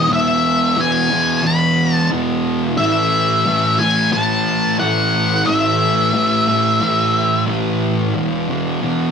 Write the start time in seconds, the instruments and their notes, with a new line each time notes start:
Already playing: distorted electric guitar E3, lead electric guitar D#5
0.09 distorted electric guitar E2 B2 E3
0.13 lead electric guitar E5
0.76 distorted electric guitar E2 B2 E3
0.80 lead electric guitar G#5
1.10 distorted electric guitar B2 E3
1.43 distorted electric guitar E2 B2 E3, lead electric guitar B5
1.94 lead electric guitar A5
2.11 distorted electric guitar E2 B2 E3
2.77 distorted electric guitar A2 E3 A3, lead electric guitar E5
3.45 distorted electric guitar A2 E3 A3
3.79 distorted electric guitar E3 A3, lead electric guitar G#5
4.12 distorted electric guitar A2 E3 A3, lead electric guitar A5
4.79 distorted electric guitar A2 E3 A3, lead electric guitar F#5
5.45 distorted electric guitar A2 E3 A3, lead electric guitar E5
6.13 distorted electric guitar A2 E3 A3
6.48 distorted electric guitar E3 A3
6.81 distorted electric guitar A2 E3 A3
7.47 distorted electric guitar A2 E3 A3
8.15 distorted electric guitar E2 B2 E3
8.49 distorted electric guitar B2 E3
8.82 distorted electric guitar E2 B2 E3